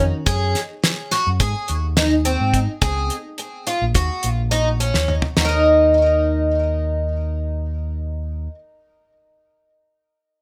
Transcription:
0.00 0.11 F2 medium
0.00 0.25 D#3 medium
0.00 0.25 C#4 medium
0.00 0.26 F#4 medium
0.26 0.53 F#2 medium
0.26 0.59 G#4 medium
0.26 kick medium
0.26 closed hi-hat medium
0.55 snare soft
0.55 closed hi-hat soft
0.84 snare medium
0.84 closed hi-hat medium
1.11 1.28 F#4 medium
1.11 snare soft
1.11 closed hi-hat soft
1.27 1.40 F#2 medium
1.40 1.53 G#2 medium
1.40 1.73 G#4 medium
1.40 kick medium
1.40 closed hi-hat medium
1.68 2.36 D#2 medium
1.68 closed hi-hat soft
1.97 2.13 D#4 medium
1.97 snare medium
1.97 closed hi-hat medium
2.25 2.58 C4 medium
2.25 closed hi-hat medium
2.40 2.66 G#2 medium
2.54 kick medium
2.54 closed hi-hat soft
2.82 3.08 C#2 medium
2.82 3.15 G#4 medium
2.82 kick medium
2.82 closed hi-hat medium
3.10 closed hi-hat soft
3.38 closed hi-hat medium
3.67 3.84 F4 medium
3.67 closed hi-hat soft
3.82 3.94 A#1 medium
3.95 4.09 D#2 medium
3.95 4.28 F#4 medium
3.95 kick medium
3.95 closed hi-hat medium
4.23 4.91 A#1 medium
4.23 closed hi-hat soft
4.51 4.68 D#4 medium
4.51 closed hi-hat medium
4.80 5.13 C#4 medium
4.80 closed hi-hat soft
4.94 5.21 D#2 medium
4.94 snare soft
5.08 mid tom soft
5.22 floor tom medium
5.37 8.47 D#2 medium
5.37 8.46 D#4 soft
5.37 5.48 F#4 medium
5.37 snare medium
5.45 8.54 A#4 medium
5.45 8.58 D#5 soft

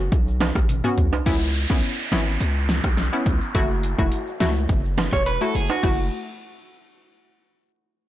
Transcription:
0.12 0.52 B1 loud
0.12 kick loud
0.12 closed hi-hat medium
0.12 shaker medium
0.28 shaker medium
0.41 snare loud
0.41 closed hi-hat medium
0.41 high timbale medium
0.55 0.82 A1 medium
0.55 kick medium
0.55 cross-stick loud
0.55 shaker medium
0.69 closed hi-hat medium
0.69 high tom medium
0.69 shaker medium
0.84 0.96 B3 medium
0.84 0.96 C#4 medium
0.84 0.96 F#4 medium
0.84 mid tom medium
0.84 shaker medium
0.98 1.11 B1 loud
0.98 closed hi-hat medium
0.98 mid tom loud
0.98 shaker medium
1.13 floor tom loud
1.13 high timbale medium
1.13 shaker medium
1.26 1.66 C#2 loud
1.26 1.40 B3 medium
1.26 1.40 C#4 medium
1.26 1.40 E4 loud
1.26 kick loud
1.26 closed hi-hat medium
1.26 downlifter medium
1.26 shaker medium
1.42 shaker soft
1.55 closed hi-hat soft
1.70 1.82 B1 medium
1.70 1.82 B3 medium
1.70 1.82 C#4 medium
1.70 1.82 E4 medium
1.70 kick loud
1.70 shaker medium
1.83 closed hi-hat medium
1.83 shaker medium
1.98 shaker medium
2.12 2.38 G#1 loud
2.12 2.25 B3 medium
2.12 2.26 C#4 medium
2.12 2.26 E4 medium
2.12 snare loud
2.12 closed hi-hat soft
2.12 shaker medium
2.27 shaker medium
2.40 2.80 C#2 loud
2.40 closed hi-hat medium
2.40 shaker medium
2.56 shaker medium
2.69 snare loud
2.69 closed hi-hat medium
2.69 shaker medium
2.84 3.10 B1 medium
2.84 kick medium
2.84 cross-stick loud
2.84 shaker medium
2.97 snare medium
2.97 closed hi-hat medium
2.97 shaker medium
3.13 3.25 B3 medium
3.13 3.25 C#4 medium
3.13 3.25 E4 medium
3.13 shaker medium
3.26 3.40 C#2 medium
3.26 kick medium
3.26 closed hi-hat medium
3.26 shaker soft
3.41 shaker medium
3.55 3.95 F#1 loud
3.55 3.68 A3 loud
3.55 3.68 E4 medium
3.55 3.68 F#4 loud
3.55 kick loud
3.55 closed hi-hat medium
3.55 shaker medium
3.71 shaker medium
3.83 closed hi-hat medium
3.99 4.11 E1 loud
3.99 4.10 A3 medium
3.99 4.11 E4 medium
3.99 4.11 F#4 medium
3.99 kick loud
3.99 shaker medium
4.12 closed hi-hat medium
4.12 shaker medium
4.27 shaker medium
4.40 4.67 C#2 loud
4.40 4.54 A3 medium
4.40 4.54 E4 medium
4.40 4.54 F#4 medium
4.40 snare loud
4.40 closed hi-hat medium
4.40 shaker medium
4.56 shaker medium
4.69 5.09 F#1 loud
4.69 kick loud
4.69 closed hi-hat medium
4.69 shaker medium
4.85 shaker medium
4.98 snare loud
4.98 closed hi-hat medium
4.98 high timbale medium
4.98 shaker medium
5.13 5.39 E1 loud
5.13 5.26 C#5 medium
5.13 kick medium
5.13 cross-stick loud
5.13 shaker medium
5.26 5.42 B4 medium
5.26 closed hi-hat medium
5.26 shaker medium
5.41 5.53 A3 medium
5.41 5.53 E4 medium
5.41 5.53 F#4 medium
5.41 5.55 A4 medium
5.41 shaker medium
5.55 5.69 F#1 loud
5.55 5.69 G#4 medium
5.55 closed hi-hat medium
5.55 shaker soft
5.70 5.97 F#4 medium
5.70 high timbale medium
5.70 shaker medium
5.83 6.10 F#1 loud
5.83 6.05 A3 medium
5.83 6.05 E4 medium
5.83 6.05 F#4 loud
5.83 kick loud
5.83 crash medium
5.83 shaker medium

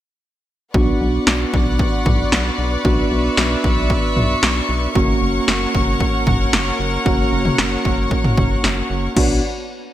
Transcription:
0.74 0.93 B1 loud
0.74 2.81 B3 medium
0.74 2.81 D4 medium
0.74 2.81 F#4 medium
0.74 4.91 B4 medium
0.74 4.91 D5 medium
0.74 2.83 F#5 medium
0.74 9.12 C#6 medium
0.74 kick loud
1.01 1.19 B1 loud
1.27 1.45 B1 medium
1.27 snare loud
1.54 1.81 B1 loud
1.54 kick medium
1.79 kick medium
2.06 2.24 B1 medium
2.06 kick medium
2.06 mid tom medium
2.32 2.51 B1 loud
2.32 snare loud
2.58 2.77 B1 loud
2.85 3.03 B1 loud
2.85 4.91 B3 medium
2.85 4.91 D4 medium
2.85 4.92 F#4 medium
2.85 4.93 E5 medium
2.85 kick loud
3.11 3.30 B1 loud
3.37 3.56 B1 loud
3.37 snare loud
3.64 3.92 B1 loud
3.64 kick medium
3.90 kick medium
4.17 4.35 B1 loud
4.17 mid tom medium
4.43 4.61 B1 loud
4.43 snare loud
4.69 4.88 B1 medium
4.95 5.14 F#1 loud
4.95 7.02 A#3 medium
4.95 7.02 C#4 medium
4.95 7.02 F#4 medium
4.95 9.12 A#4 medium
4.95 9.12 C#5 medium
4.95 9.12 F#5 medium
4.95 kick loud
5.22 5.40 F#1 loud
5.48 5.67 F#1 medium
5.48 snare loud
5.75 6.02 F#1 loud
5.75 kick medium
6.00 kick medium
6.27 6.45 F#1 loud
6.27 kick medium
6.27 mid tom medium
6.53 6.72 F#1 loud
6.53 snare loud
6.80 6.98 F#1 loud
7.06 7.24 F#1 loud
7.06 9.12 A#3 medium
7.06 9.12 C#4 medium
7.06 9.12 F#4 medium
7.06 kick loud
7.32 7.51 F#1 loud
7.45 mid tom medium
7.58 7.77 F#1 medium
7.58 snare loud
7.85 8.13 F#1 medium
7.85 kick medium
8.11 kick medium
8.24 mid tom loud
8.37 8.56 F#1 medium
8.37 kick medium
8.37 mid tom medium
8.64 8.82 F#1 medium
8.64 snare loud
8.90 9.09 F#1 loud
9.16 9.41 B1 loud
9.16 9.41 B3 medium
9.16 9.41 D4 medium
9.16 9.41 F#4 medium
9.16 9.41 B4 medium
9.16 9.41 C#5 medium
9.16 9.41 F#5 medium
9.16 kick loud
9.16 crash medium

